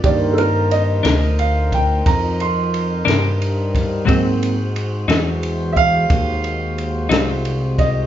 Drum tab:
RD |xxxxxxxxxxxx|xxxxxxxxxxxx|
SD |---o--o--o-o|---o-----o-o|
BD |o----oo----o|o----oo----o|